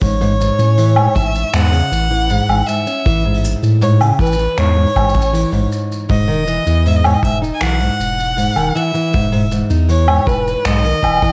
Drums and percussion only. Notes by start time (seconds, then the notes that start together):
0.01 kick, open hi-hat, shaker
0.21 open hi-hat
0.41 shaker
0.58 open hi-hat, shaker
0.77 open hi-hat, shaker
0.96 open hi-hat, low woodblock
1.16 kick, shaker
1.35 shaker
1.54 finger snap, open hi-hat, shaker
1.72 open hi-hat
1.93 shaker
2.11 open hi-hat
2.30 open hi-hat, shaker
2.49 open hi-hat, low woodblock
2.68 shaker
2.87 shaker
3.05 kick, open hi-hat, shaker
3.34 open hi-hat
3.44 shaker
3.62 open hi-hat, shaker
3.82 open hi-hat, shaker
4.00 open hi-hat, low woodblock
4.19 kick, shaker
4.26 shaker
4.33 shaker
4.39 shaker
4.57 finger snap, open hi-hat, shaker
4.86 open hi-hat
4.96 kick, low woodblock, shaker
5.09 shaker
5.13 kick, open hi-hat, shaker
5.18 open hi-hat, shaker
5.23 open hi-hat
5.28 open hi-hat
5.33 open hi-hat, shaker
5.38 open hi-hat
5.42 open hi-hat
5.47 open hi-hat
5.53 open hi-hat
5.72 shaker
5.92 shaker
6.09 kick, open hi-hat, shaker
6.29 open hi-hat
6.31 open hi-hat
6.33 open hi-hat
6.36 open hi-hat
6.38 open hi-hat
6.41 open hi-hat
6.43 open hi-hat
6.45 open hi-hat, shaker
6.66 open hi-hat, shaker
6.86 open hi-hat, shaker
7.04 open hi-hat, low woodblock
7.23 kick, shaker
7.44 shaker
7.61 finger snap, open hi-hat, shaker
7.80 open hi-hat
8.00 shaker
8.18 open hi-hat, shaker
8.37 open hi-hat, shaker
8.56 open hi-hat, low woodblock
8.76 shaker
8.95 shaker
9.13 kick, open hi-hat, shaker
9.32 open hi-hat
9.52 shaker
9.70 open hi-hat, shaker
9.89 open hi-hat, shaker
10.08 open hi-hat, low woodblock
10.27 kick, shaker
10.47 shaker
10.65 finger snap, open hi-hat, shaker
10.84 open hi-hat
11.03 kick, low woodblock, shaker
11.10 low woodblock
11.17 low woodblock
11.22 kick, open hi-hat, low woodblock, shaker